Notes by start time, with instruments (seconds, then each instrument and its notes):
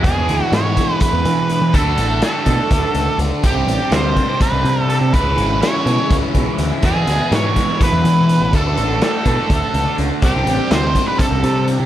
0.03 overdriven electric guitar E2 B2 E3 G#3, picked electric bass E2, string machine D4 G#4 E5 B5, lead electric guitar G#4, kick, closed hi-hat
0.07 overdriven electric guitar D4 E4
0.16 picked electric bass E2
0.28 picked electric bass D2, closed hi-hat
0.52 picked electric bass G#2, lead electric guitar C#5, snare, closed hi-hat
0.77 kick, closed hi-hat
1.00 lead electric guitar B4, kick, closed hi-hat
1.13 picked electric bass E2
1.25 picked electric bass E3, closed hi-hat
1.50 closed hi-hat
1.62 picked electric bass E3
1.73 picked electric bass D2, overdriven electric guitar D3 A3 D4, lead electric guitar A4, string machine A4 F#5 C#6, kick, closed hi-hat
1.77 overdriven electric guitar F#4
1.98 picked electric bass A1, closed hi-hat
2.22 lead electric guitar A4, snare, closed hi-hat
2.46 picked electric bass B2, kick, closed hi-hat
2.71 picked electric bass D2, kick, snare, closed hi-hat
2.95 picked electric bass C#2, closed hi-hat
3.18 picked electric bass C#2, closed hi-hat
3.43 picked electric bass C2, overdriven electric guitar C3 G3 C4 D4 G4, string machine C4 D5 G5 D6, lead electric guitar G4, kick, closed hi-hat
3.54 picked electric bass C2
3.66 picked electric bass A1, closed hi-hat
3.91 picked electric bass D2, lead electric guitar C5, snare, closed hi-hat
4.16 kick, closed hi-hat
4.41 lead electric guitar B4, kick, closed hi-hat
4.52 picked electric bass C2
4.64 picked electric bass C3, closed hi-hat
4.89 lead electric guitar A4, closed hi-hat
5.01 picked electric bass C3
5.13 picked electric bass C#2, overdriven electric guitar C#3 E3 G#3 C#4 E4, lead electric guitar B4, string machine C#5 E5 G#5 E6, kick, closed hi-hat
5.37 picked electric bass G#1, closed hi-hat
5.62 lead electric guitar C#5, snare, closed hi-hat
5.86 picked electric bass B2, closed hi-hat
6.10 picked electric bass C#2, kick, snare, closed hi-hat
6.34 picked electric bass B1, kick, closed hi-hat
6.58 picked electric bass D2, closed hi-hat
6.82 overdriven electric guitar E2 B2 E3 G#3 D4 E4, picked electric bass E2, lead electric guitar G#4, string machine B4 B5, kick, closed hi-hat
6.96 picked electric bass E2
7.07 picked electric bass D2, closed hi-hat
7.31 picked electric bass G#2, lead electric guitar C#5, snare, closed hi-hat
7.56 kick, snare, closed hi-hat
7.81 lead electric guitar B4, kick, closed hi-hat
7.92 picked electric bass E2
8.04 picked electric bass E3, closed hi-hat
8.29 closed hi-hat
8.40 picked electric bass A1
8.52 picked electric bass D2, overdriven electric guitar D3 A3 D4, string machine A4 D5 F#5 C#6, lead electric guitar A4, kick, closed hi-hat
8.57 overdriven electric guitar F#4
8.77 picked electric bass A1, closed hi-hat
9.02 lead electric guitar A4, snare, closed hi-hat
9.26 picked electric bass B2, kick, closed hi-hat
9.50 picked electric bass D2, kick, closed hi-hat
9.74 picked electric bass C#2, closed hi-hat
9.98 picked electric bass C#2, closed hi-hat
10.22 picked electric bass C2, overdriven electric guitar C3 G3 C4 D4 G4, lead electric guitar G4, string machine C5 G5 D6, kick, closed hi-hat
10.35 picked electric bass C2
10.46 picked electric bass A1, closed hi-hat
10.71 picked electric bass D2, lead electric guitar C5, snare, closed hi-hat
10.95 kick, closed hi-hat
11.08 lead electric guitar B4
11.18 lead electric guitar A4, kick, closed hi-hat
11.31 picked electric bass C2
11.44 picked electric bass C3, closed hi-hat
11.68 closed hi-hat
11.80 picked electric bass C3